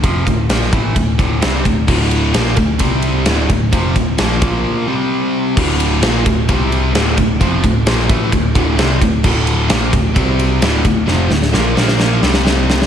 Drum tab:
CC |----------------|x---------------|----------------|x---------------|
RD |x-x-x-x-x-x-x-x-|--x-x-x-x-x-x-x-|x-x-x-x---------|--x-x-x-x-x-x-x-|
SD |----oo------o---|----oo------o---|----o-----------|----o-------o---|
BD |o-o---o-o-o---o-|o-----o-o-----o-|o-o---o---------|o-----o-o-----o-|

CC |----------------|x---------------|----------------|
RD |x-x-x-x-x-x-x-x-|--x-x-x-x-x-x-x-|----------------|
SD |----oo------o---|----o-------o---|o-ooo-ooo-ooo-oo|
BD |o-o---o-o-o---o-|o-----o-o-----o-|----------------|